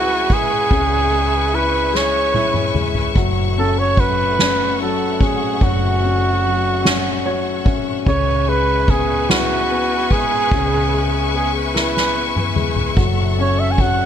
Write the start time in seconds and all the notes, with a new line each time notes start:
Already playing: C#2 C#3 G#3 E4 F#4 B4 E5 G#5 C#6
0.29 G#3 G#4, kick, ride
0.71 C#2 C#3, kick, ride
1.11 G#3, ride
1.52 E4 B4, ride
1.94 G#3 C#5, snare
2.34 E4, high tom
2.54 mid tom
2.74 G#3, mid tom
2.95 floor tom
3.15 F#1 F#3 A3 F#5, kick, ride
3.56 C#4 A4, ride
3.79 C#5
3.97 F#3 B4, kick, ride
4.38 C#4, snare, ride
4.80 F#3 A4, ride
5.20 C#4 G#4, kick, ride
5.61 F#1 F#3 F#4, kick, ride
6.02 C#4, ride
6.43 F#3, ride
6.84 C#4, snare, ride
7.25 F#3 C#5, ride
7.65 C#4, kick, ride
8.06 C#2 C#3 B4 C#5 E5 G#5 C#6, kick, ride
8.47 G#3 B4, ride
8.87 B3 G#4, kick, ride
9.28 E4 F#4, snare, ride
9.70 B3, ride
10.09 G#3 G#4, kick, ride
10.51 C#2 C#3, kick, ride
10.92 G#3, ride
11.33 B3 G#4, ride
11.74 E4 B4, snare
11.97 snare
12.15 B3
12.36 mid tom
12.56 G#3, mid tom
12.76 floor tom
12.96 F#1 F#3 A4 F#5, kick, ride
13.37 C#4, ride
13.41 C#5
13.60 E5
13.71 G#5
13.78 F#3 F#5, kick, ride